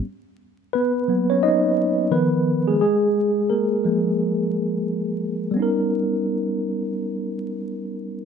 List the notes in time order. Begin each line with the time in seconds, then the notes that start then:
0.73 B3 B4
1.08 F#3 A#3 B3
1.30 C#4 C#5
1.43 D#4 D#5
2.11 D#3 F3 B3 A#4 B4
2.68 G#3 G#4
2.81 G#3 G#4
3.50 A#3 A#4
3.84 F3 G#3 A#3
5.51 G3 B3
5.56 C#4 D#4
5.62 A#4